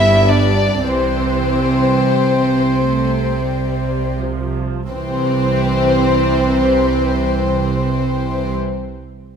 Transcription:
Already playing: double bass section G1, cello section G2, viola section G3 B3, violin section E4 E5
0.27 violin section D4 D5
0.85 double bass section C2, cello section C3, viola section E3 C4, violin section C4 C5
2.78 viola section A3
3.47 viola section G3
4.19 viola section F3
4.91 double bass section C2, cello section C3, viola section E3 C4, violin section C4 C5

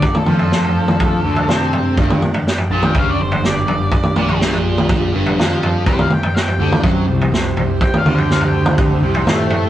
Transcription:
Already playing: string machine A3 D4 A4, lead electric guitar D5
0.02 kick, floor tom
0.14 lead electric guitar A4, mid tom
0.26 fingered electric bass F2, distorted electric guitar F3, lead electric guitar A4, mid tom
0.39 floor tom
0.52 snare
0.64 floor tom
0.88 mid tom
1.00 kick, floor tom
1.24 fingered electric bass D2, distorted electric guitar D3
1.36 floor tom
1.48 fingered electric bass C3, distorted electric guitar C4, snare, mid tom
1.73 floor tom
1.95 fingered electric bass G1, distorted electric guitar G2, string machine G3 G4 D5, kick, floor tom
2.10 mid tom
2.22 muted fingered electric bass stroke, muted distorted electric guitar stroke, mid tom
2.34 floor tom
2.47 snare
2.58 floor tom
2.70 fingered electric bass A#1, distorted electric guitar A#2, lead electric guitar A5
2.83 lead electric guitar G5, mid tom
2.94 fingered electric bass C#2, distorted electric guitar C#3, lead electric guitar F5, kick, floor tom
3.10 lead electric guitar D5
3.19 fingered electric bass G1, distorted electric guitar G2, lead electric guitar C5
3.32 floor tom
3.44 fingered electric bass G1, distorted electric guitar G2, lead electric guitar D5, snare
3.68 fingered electric bass G1, distorted electric guitar G2, floor tom
3.92 kick, floor tom
4.03 mid tom
4.16 fingered electric bass A#1, distorted electric guitar A#2, mid tom
4.28 floor tom
4.41 snare
4.54 floor tom
4.78 mid tom
4.89 kick, floor tom
5.13 fingered electric bass G1, distorted electric guitar G2
5.26 floor tom
5.38 fingered electric bass F2, distorted electric guitar F3, snare, mid tom
5.63 floor tom
5.85 fingered electric bass C2, distorted electric guitar C3, string machine C4 C5, lead electric guitar C5, kick, floor tom
5.99 lead electric guitar F5, mid tom
6.10 lead electric guitar G5, muted distorted electric guitar stroke, muted fingered electric bass stroke, mid tom
6.23 floor tom
6.36 lead electric guitar G5, snare
6.48 floor tom
6.58 fingered electric bass D2, distorted electric guitar D3
6.72 mid tom
6.83 fingered electric bass F#2, distorted electric guitar F#3, kick, floor tom
7.07 fingered electric bass C2, distorted electric guitar C3
7.21 floor tom
7.32 fingered electric bass C2, distorted electric guitar C3, snare
7.56 fingered electric bass C2, distorted electric guitar C3, floor tom
7.81 lead electric guitar G5, kick, floor tom
7.94 mid tom
7.98 lead electric guitar F5
8.05 fingered electric bass D2, distorted electric guitar D3, mid tom
8.15 lead electric guitar G5, floor tom
8.31 lead electric guitar F5, snare
8.41 floor tom
8.48 lead electric guitar G5
8.66 mid tom
8.78 kick, floor tom
9.02 fingered electric bass C2, distorted electric guitar C3
9.14 floor tom
9.25 fingered electric bass A2, distorted electric guitar A3, snare, mid tom
9.50 floor tom

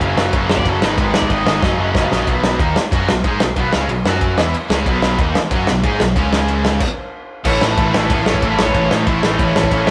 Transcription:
Already playing: distorted electric guitar F#2 C#3 F#3
0.01 picked electric bass F#1, distorted electric guitar F#2 C#3 F#3 A#3 C#4, kick, ride
0.17 picked electric bass F#1, distorted electric guitar F#2 C#3 F#3 A#3 C#4, snare
0.33 picked electric bass F#1, distorted electric guitar F#2 C#3 F#3 A#3 C#4, kick, ride
0.49 picked electric bass F#1, distorted electric guitar F#2 C#3 F#3 A#3 C#4, overdriven electric guitar D5, snare
0.57 kick
0.65 picked electric bass F#1, distorted electric guitar F#2 C#3 F#3 A#3 C#4, overdriven electric guitar A4, kick, ride
0.82 picked electric bass G#1, distorted electric guitar G#2 D#3 G#3 B3 D#4, overdriven electric guitar B4, snare
0.98 picked electric bass G#1, distorted electric guitar G#2 D#3 G#3 B3 D#4, kick, ride
1.14 picked electric bass G#2, distorted electric guitar G#2 D#3 G#3 B3 D#4, overdriven electric guitar D5, snare
1.22 kick
1.30 picked electric bass G#1, distorted electric guitar G#2 D#3 G#3 B3 D#4, overdriven electric guitar D#5, kick, ride
1.46 picked electric bass G#1, distorted electric guitar G#2 D#3 G#3 B3 D#4, snare
1.62 picked electric bass F#1, distorted electric guitar F#2 C#3 F#3 A#3 C#4, kick, snare
1.79 picked electric bass F#1, distorted electric guitar F#2 C#3 F#3 A#3 C#4
1.94 picked electric bass F#1, distorted electric guitar F#2 C#3 F#3 A#3 C#4, kick, snare
2.11 picked electric bass A#1, distorted electric guitar F#2 C#3 F#3 A#3 C#4, snare
2.27 picked electric bass B1, distorted electric guitar B2 F#3 B3, kick, ride
2.44 snare
2.59 picked electric bass D#2, distorted electric guitar D#3 A#3 D#4, kick, ride
2.76 muted picked electric bass stroke, muted distorted electric guitar stroke, snare
2.91 picked electric bass F#2, distorted electric guitar F#3 C#4 F#4, kick, ride
3.08 picked electric bass B1, distorted electric guitar B2 F#3, snare
3.24 picked electric bass G#2, distorted electric guitar G#3 D#4 G#4, kick, ride
3.40 picked electric bass B1, distorted electric guitar B2 F#3, snare
3.56 picked electric bass B1, distorted electric guitar B2 F#3 B3, kick, ride
3.73 picked electric bass C#2, distorted electric guitar C#3 G#3 C#4, snare
3.89 picked electric bass B1, distorted electric guitar B2 F#3, ride
4.05 picked electric bass F#2, distorted electric guitar F#3 C#4 F#4, snare
4.21 kick, ride
4.37 picked electric bass E2, distorted electric guitar E3 B3 E4, snare
4.54 muted distorted electric guitar stroke, muted picked electric bass stroke, ride
4.69 picked electric bass C#2, distorted electric guitar C#3 G#3 C#4, snare
4.86 picked electric bass B1, distorted electric guitar B2 F#3 B3, kick, ride
5.02 snare
5.18 picked electric bass D#2, distorted electric guitar D#3 A#3 D#4, kick, ride
5.34 muted distorted electric guitar stroke, muted picked electric bass stroke, snare
5.51 picked electric bass F#2, distorted electric guitar F#3 C#4 F#4, kick, ride
5.67 picked electric bass B1, distorted electric guitar B2 F#3, snare
5.83 picked electric bass G#2, distorted electric guitar G#3 D#4 G#4, kick, ride
5.99 picked electric bass B1, distorted electric guitar B2 F#3, snare
6.16 picked electric bass C#2, distorted electric guitar C#3 G#3 C#4, kick, ride
6.33 snare
6.48 ride
6.65 snare
6.80 kick, crash
7.44 picked electric bass A1, distorted electric guitar A2 E3 A3 C#4 E4, overdriven electric guitar C#4 C#5, kick, crash
7.61 picked electric bass A1, distorted electric guitar A2 E3 A3 C#4 E4, overdriven electric guitar A3 A4, snare
7.77 picked electric bass A1, distorted electric guitar A2 E3 A3 C#4 E4, kick, ride
7.93 picked electric bass A1, distorted electric guitar A2 E3 A3 C#4 E4, snare
8.09 picked electric bass A1, distorted electric guitar A2 E3 A3 C#4 E4, overdriven electric guitar B3 B4, kick, ride
8.25 picked electric bass A1, distorted electric guitar A2 E3 A3 C#4 E4, overdriven electric guitar C#4 C#5, snare
8.34 kick
8.42 picked electric bass A1, distorted electric guitar A2 E3 A3 C#4 E4, overdriven electric guitar A3 A4, kick, ride
8.58 picked electric bass A1, distorted electric guitar A2 E3 A3 C#4 E4, overdriven electric guitar C#4 C#5, snare
8.66 kick
8.74 picked electric bass A1, distorted electric guitar A2 E3 A3 C#4 E4, kick, ride
8.91 picked electric bass A2, distorted electric guitar A2 E3 A3 C#4 E4, overdriven electric guitar D#4 D#5, snare
9.06 picked electric bass A1, distorted electric guitar A2 E3 A3 C#4 E4, overdriven electric guitar E4 E5, kick, ride
9.22 picked electric bass A1, distorted electric guitar A2 E3 A3 C#4 E4, overdriven electric guitar D#4 D#5, snare
9.39 picked electric bass A1, distorted electric guitar A2 E3 A3 C#4 E4, overdriven electric guitar C#4 C#5, kick, ride
9.55 picked electric bass A1, distorted electric guitar A2 E3 A3 C#4 E4, snare
9.63 kick
9.71 picked electric bass A1, distorted electric guitar A2 E3 A3 C#4 E4, kick, ride
9.86 distorted electric guitar A3 C#4 E4, snare

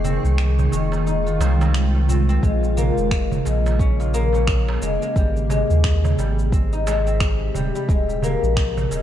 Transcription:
Already playing: sub bass F1, ambient pad D#3 G#3 F4, guzheng G#3 A#3 D#4 G#4
0.04 guzheng C4, darbuka dum, shaker
0.24 sub bass C2, shaker
0.38 finger snap, shaker
0.59 darbuka dum, shaker
0.72 sub bass F1, guzheng G#3, darbuka ka, shaker
0.92 darbuka tek, shaker
1.07 guzheng D#4, shaker
1.26 guzheng F4, darbuka ka, shaker
1.40 sub bass C2, guzheng C5, darbuka tek, shaker
1.61 guzheng C4, darbuka ka, darbuka tek, shaker
1.74 finger snap, shaker
1.95 darbuka ka
2.09 guzheng C4, darbuka dum, shaker
2.29 guzheng C4, darbuka ka, shaker
2.43 sub bass A#1, ambient pad C#3 A#3 G#4, guzheng G#3, kick, shaker
2.63 darbuka ka, shaker
2.77 guzheng A#3, darbuka dum, shaker
2.97 sub bass F1, shaker
3.11 finger snap, kick, shaker
3.31 darbuka dum, shaker
3.45 sub bass A#1, guzheng G#3, darbuka ka, shaker
3.66 darbuka tek, shaker
3.79 guzheng C#4, kick, shaker
4.00 guzheng F4, darbuka tek, shaker
4.14 guzheng A#3, darbuka ka, shaker
4.33 guzheng C#4, darbuka ka, shaker
4.47 finger snap, kick, shaker
4.68 darbuka tek
4.82 sub bass F1, guzheng G#3, shaker
5.02 guzheng G#3, shaker
5.16 sub bass G#1, ambient pad C3 G4, guzheng G3, kick, shaker
5.37 shaker
5.50 guzheng G#3, darbuka dum, shaker
5.70 sub bass D#2, shaker
5.84 finger snap, kick, shaker
6.05 darbuka dum, shaker
6.18 sub bass G#1, guzheng G3, darbuka ka, shaker
6.39 shaker
6.52 guzheng C4, kick, shaker
6.73 guzheng D#4, shaker
6.87 guzheng G#3, darbuka tek, shaker
7.07 guzheng C4, shaker
7.20 finger snap, kick, shaker
7.54 sub bass D#1, guzheng G3, darbuka dum, shaker
7.75 guzheng G3, shaker
7.89 sub bass D#1, ambient pad D#3 A#3 G#4, guzheng G#3, kick, shaker
8.08 darbuka ka, shaker
8.22 guzheng A#3, darbuka dum, shaker
8.43 sub bass A#1, shaker
8.57 finger snap, kick, shaker
8.77 darbuka dum, shaker
8.91 sub bass D#1, guzheng G#3, darbuka ka, shaker

